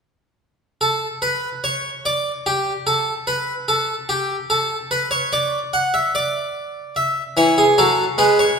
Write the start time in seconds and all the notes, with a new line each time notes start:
0.81 A4
1.22 B4
1.64 C#5
2.06 D5
2.46 G4
2.87 A4
3.27 B4
3.68 A4
4.09 G4
4.50 A4
4.91 B4
5.11 C#5
5.33 D5
5.73 F#5
5.94 E5
6.15 D5
6.96 E5
7.37 E3 C#5
7.58 G#4
7.78 F#3 A4
8.18 G#3 B4
8.39 C#5